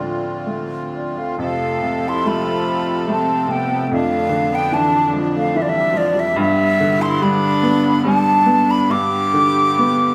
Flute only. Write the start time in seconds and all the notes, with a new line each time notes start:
Already playing: D5
0.95 D5
1.18 F5
1.42 F5
2.08 C6
2.27 B5
3.12 A5
3.51 G5
3.87 G5
3.93 F5
4.55 G5
4.74 A5
5.36 F5
5.57 E5
5.62 D5
5.69 E5
5.97 D5
6.19 E5
6.40 E5
7.02 C6
7.22 B5
8.06 A5
8.71 B5
8.91 D6